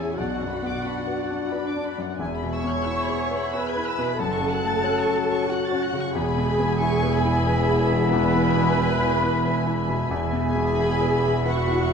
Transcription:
0.00 0.13 A1 soft
0.00 0.20 E2 soft
0.00 0.14 C#4 medium
0.00 0.21 C#4 soft
0.00 0.14 E4 medium
0.00 0.21 E4 soft
0.00 0.16 G#4 medium
0.00 0.14 C#5 medium
0.00 0.20 C#5 soft
0.00 0.17 E5 soft
0.00 0.19 E5 medium
0.00 0.17 G#5 medium
0.16 0.74 B1 medium
0.16 2.16 B1 soft
0.16 0.74 B2 medium
0.16 2.16 D4 medium
0.16 2.16 F#4 medium
0.16 1.50 F#4 medium
0.16 0.33 D5 medium
0.16 2.16 D5 medium
0.16 1.52 F#5 medium
0.16 1.54 F#5 medium
0.16 2.20 F#5 medium
0.34 0.52 F#5 soft
0.40 0.76 F#2 soft
0.50 0.68 B5 soft
0.63 0.99 B3 soft
0.67 0.85 D6 medium
0.84 1.21 D4 soft
0.84 1.02 B5 soft
1.01 1.18 F#5 soft
1.07 1.44 B4 soft
1.17 1.35 D5 soft
1.30 1.66 D4 soft
1.35 1.52 F#5 medium
1.52 2.20 D4 medium
1.52 1.89 B4 soft
1.52 2.20 D5 medium
1.52 1.69 B5 medium
1.69 1.86 D6 soft
1.76 2.11 D4 soft
1.85 2.03 B5 medium
1.98 2.20 F#2 soft
2.02 2.20 F#5 medium
2.17 2.75 E1 medium
2.17 4.15 E2 medium
2.17 2.75 E2 medium
2.17 4.01 B3 medium
2.17 4.01 G#4 medium
2.17 4.21 E5 medium
2.17 2.34 G#5 medium
2.17 4.16 G#5 medium
2.36 2.53 B5 medium
2.43 2.78 B2 soft
2.52 3.50 C#5 medium
2.52 3.49 C#6 medium
2.52 3.50 C#6 medium
2.52 2.70 E6 medium
2.64 3.00 B3 soft
2.70 2.87 G#6 medium
2.86 3.22 E4 medium
2.86 3.03 E6 medium
3.02 3.20 B5 medium
3.09 3.45 G#4 soft
3.19 3.37 G#5 medium
3.31 3.67 B4 medium
3.36 3.53 B5 medium
3.53 3.89 G#4 medium
3.53 4.19 B4 medium
3.53 4.21 B5 medium
3.53 4.19 B5 medium
3.53 3.70 E6 medium
3.70 3.87 G#6 medium
3.77 4.11 E4 medium
3.86 4.03 E6 medium
3.98 4.20 B2 medium
4.04 4.20 B5 medium
4.18 4.74 F#1 medium
4.18 4.74 F#2 medium
4.18 6.12 F#2 medium
4.18 6.11 C#4 medium
4.18 6.11 F#4 medium
4.18 5.47 A4 loud
4.18 5.88 F#5 medium
4.18 5.51 A5 loud
4.18 5.50 A5 medium
4.18 5.85 A5 medium
4.18 4.36 A5 medium
4.37 4.53 C#6 medium
4.41 4.76 C#3 medium
4.52 4.69 F#6 medium
4.63 4.98 A3 soft
4.68 4.85 A6 medium
4.84 5.19 C#4 medium
4.84 5.01 F#6 medium
5.00 5.17 C#6 medium
5.06 5.41 F#4 medium
5.17 5.34 A5 medium
5.28 5.63 A4 medium
5.33 5.50 C#6 medium
5.49 6.15 F#4 loud
5.49 5.85 F#4 medium
5.49 6.17 F#5 medium
5.49 6.16 F#5 medium
5.49 5.67 F#6 medium
5.67 5.83 A6 medium
5.72 6.07 C#4 medium
5.82 5.99 F#6 medium
5.93 6.15 C#3 medium
5.99 6.15 C#6 medium
6.15 10.07 E1 medium
6.15 8.09 E2 medium
6.15 10.07 E2 medium
6.15 9.93 B3 loud
6.15 9.93 E4 loud
6.15 8.09 G#4 medium
6.15 10.07 E5 medium
6.15 8.13 G#5 loud
6.15 8.13 G#5 medium
6.15 10.07 B5 medium
6.15 6.78 B5 medium
6.37 6.72 B2 medium
6.59 6.94 B3 medium
6.81 7.16 E4 medium
6.81 7.15 C#6 medium
7.03 7.38 B4 medium
7.14 8.13 B5 medium
7.25 7.61 E4 medium
7.47 7.83 B4 medium
7.69 8.04 E4 medium
7.91 8.26 B2 medium
8.12 10.07 E2 medium
8.12 10.11 B4 medium
8.12 9.44 G#5 medium
8.12 10.10 B5 loud
8.12 10.07 B5 medium
8.35 8.70 B3 medium
8.56 8.92 B2 medium
8.78 9.14 E4 medium
9.00 9.36 B4 medium
9.23 9.58 E4 medium
9.45 9.80 B4 medium
9.45 9.76 G#5 medium
9.67 10.02 E4 medium
9.77 10.75 G#5 medium
9.88 10.24 B2 medium
10.10 11.93 E1 medium
10.10 11.93 E2 medium
10.10 11.93 B3 medium
10.10 11.93 E4 medium
10.10 11.93 E5 medium
10.10 11.93 B5 medium
10.32 10.68 B3 medium
10.43 11.42 G#4 medium
10.43 11.42 G#5 medium
10.43 11.48 G#5 medium
10.55 10.91 B2 medium
10.77 11.14 E4 medium
10.77 11.10 B5 medium
11.01 11.37 B4 medium
11.12 11.46 B5 medium
11.24 11.60 E4 medium
11.46 11.93 F#4 medium
11.46 11.84 B4 medium
11.46 11.93 F#5 medium
11.46 11.93 C#6 medium
11.70 11.93 E4 soft

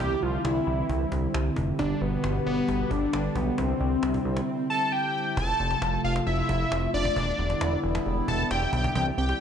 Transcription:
0.00 0.16 C2 loud
0.00 5.33 D3 medium
0.00 5.33 G3 medium
0.00 1.77 C4 medium
0.00 1.75 E4 medium
0.00 0.24 G4 loud
0.00 cajon bass loud
0.22 0.38 C2 loud
0.22 0.46 F4 loud
0.22 cajon slap soft
0.45 0.60 C2 loud
0.45 1.12 E4 medium
0.45 cajon slap loud
0.67 0.83 C2 loud
0.67 cajon slap soft
0.89 1.05 C2 loud
0.89 cajon bass medium
1.12 1.28 C2 medium
1.12 cajon bass medium
1.34 1.50 C2 loud
1.34 cajon slap loud
1.56 1.72 F1 medium
1.56 cajon bass medium
1.79 1.95 G1 loud
1.79 3.56 B3 medium
1.79 2.03 D4 loud
1.79 3.56 G4 medium
1.79 cajon bass loud
2.01 2.17 G1 loud
2.01 2.46 B3 loud
2.01 cajon slap soft
2.24 2.39 G1 loud
2.24 cajon slap loud
2.46 2.62 G1 medium
2.46 2.92 B3 loud
2.46 cajon slap soft
2.68 2.84 G1 loud
2.68 cajon bass loud
2.91 3.07 G1 medium
2.91 3.37 D4 loud
2.91 cajon bass medium
3.13 3.29 G1 loud
3.13 cajon slap loud
3.35 3.51 B1 loud
3.35 3.59 B3 medium
3.35 cajon bass medium
3.58 3.74 C2 loud
3.58 4.69 C4 medium
3.58 5.35 C4 medium
3.58 5.35 E4 medium
3.58 cajon bass loud
3.80 3.96 C2 loud
3.80 cajon slap soft
4.03 4.19 C2 loud
4.03 cajon slap loud
4.14 cajon bass medium
4.25 4.41 C2 loud
4.25 cajon slap soft
4.37 cajon slap medium
4.70 4.94 A5 loud
4.92 5.36 G5 loud
5.37 5.53 F1 loud
5.37 7.15 C3 medium
5.37 7.15 F3 medium
5.37 7.15 A3 medium
5.37 7.15 F4 medium
5.37 6.00 A5 loud
5.37 cajon bass loud
5.59 5.75 F1 loud
5.59 cajon slap soft
5.71 cajon slap medium
5.82 5.98 F1 loud
5.82 cajon slap loud
6.04 6.20 F1 medium
6.04 6.14 F5 medium
6.04 cajon slap soft
6.16 cajon slap medium
6.27 6.42 F1 medium
6.27 6.90 E5 loud
6.27 cajon slap soft
6.49 6.65 F1 medium
6.49 cajon bass medium
6.72 6.87 F1 loud
6.72 cajon slap loud
6.94 7.10 F1 loud
6.94 7.80 D5 medium
6.94 cajon slap soft
7.05 cajon bass medium
7.16 7.32 E1 loud
7.16 8.94 D3 medium
7.16 9.40 G3 medium
7.16 8.94 B3 medium
7.16 8.94 E4 medium
7.16 cajon bass loud
7.39 7.54 E1 loud
7.39 cajon slap soft
7.50 cajon slap medium
7.61 7.77 E1 loud
7.61 cajon slap loud
7.84 7.99 E1 loud
7.84 cajon slap soft
7.95 cajon slap loud
8.06 8.22 E1 loud
8.06 cajon slap soft
8.28 8.44 E1 loud
8.28 8.49 A5 medium
8.28 cajon bass medium
8.51 8.66 E1 loud
8.51 8.72 G5 medium
8.51 cajon slap loud
8.73 8.89 B1 medium
8.73 8.94 G5 medium
8.73 cajon bass medium
8.84 cajon bass medium
8.95 9.11 C2 loud
8.95 9.05 E3 medium
8.95 9.40 E3 medium
8.95 9.40 C4 medium
8.95 9.40 G4 medium
8.95 9.05 G5 medium
8.95 cajon bass loud
9.07 9.16 G3 medium
9.18 9.33 C2 loud
9.18 9.27 C4 medium
9.18 9.40 G5 medium
9.18 cajon slap soft
9.29 9.38 G4 medium
9.29 cajon slap medium

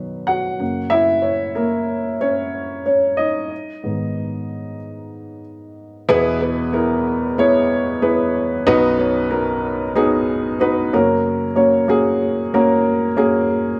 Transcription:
0.00 0.62 B2 medium
0.00 0.63 D#3 soft
0.00 0.62 F#3 medium
0.00 0.63 B3 soft
0.00 0.63 B4 medium
0.27 0.89 F#4 medium
0.27 0.94 F#5 medium
0.59 1.53 F#2 soft
0.59 1.53 C#3 soft
0.59 1.53 A#3 soft
0.90 1.22 E4 medium
0.90 1.25 E5 loud
1.22 1.31 C#4 medium
1.22 1.29 C#5 medium
1.55 2.18 A#3 medium
1.55 2.23 A#4 medium
2.21 2.82 C#4 medium
2.21 2.84 C#5 medium
2.86 3.17 C#4 medium
2.86 3.16 C#5 medium
3.17 5.41 D#4 medium
3.17 5.40 D#5 medium
3.83 4.76 G#2 soft
3.83 4.76 D#3 soft
3.83 4.77 B3 soft
6.09 8.63 E2 medium
6.09 8.63 B2 medium
6.09 6.34 B3 loud
6.09 6.34 E4 loud
6.09 6.35 G#4 loud
6.09 6.35 B4 loud
6.41 6.67 B3 medium
6.41 6.67 E4 medium
6.41 6.67 G#4 medium
6.41 6.67 B4 medium
6.73 7.24 B3 medium
6.73 7.25 E4 medium
6.73 7.25 G#4 medium
6.73 7.25 A#4 medium
7.38 7.89 B3 medium
7.38 7.89 E4 medium
7.38 7.90 G#4 medium
7.38 7.90 C#5 loud
8.02 8.53 B3 medium
8.02 8.54 E4 medium
8.02 8.54 G#4 medium
8.02 8.54 B4 medium
8.67 10.89 B1 medium
8.67 10.89 F#2 medium
8.67 8.92 B3 loud
8.67 8.92 D#4 loud
8.67 8.93 F#4 loud
8.67 8.93 B4 loud
8.98 9.24 B3 medium
8.98 9.24 D#4 medium
8.98 9.24 F#4 medium
8.98 9.25 C#5 medium
9.30 9.82 B3 medium
9.30 9.82 D#4 medium
9.30 9.82 F#4 medium
9.30 9.82 A#4 medium
9.95 10.47 B3 medium
9.95 10.47 D#4 medium
9.95 10.47 F#4 medium
9.95 10.47 G#4 loud
10.60 10.92 B3 medium
10.60 10.92 D#4 medium
10.60 10.92 F#4 medium
10.60 10.93 B4 loud
10.93 13.47 F#2 medium
10.93 13.47 C#3 medium
10.93 11.45 A#3 medium
10.93 11.45 C#4 medium
10.93 11.45 F#4 medium
10.93 11.45 A#4 medium
11.55 11.82 A#3 medium
11.55 11.82 C#4 medium
11.55 11.82 F#4 medium
11.55 11.82 C#5 medium
11.88 12.40 A#3 medium
11.88 12.40 C#4 medium
11.88 12.40 F#4 medium
11.88 12.41 G#4 loud
12.54 13.05 A#3 loud
12.54 13.05 C#4 medium
12.54 13.05 F#4 medium
12.54 13.05 A#4 loud
13.17 13.69 A#3 medium
13.17 13.69 C#4 medium
13.17 13.69 F#4 medium
13.17 13.69 G#4 loud

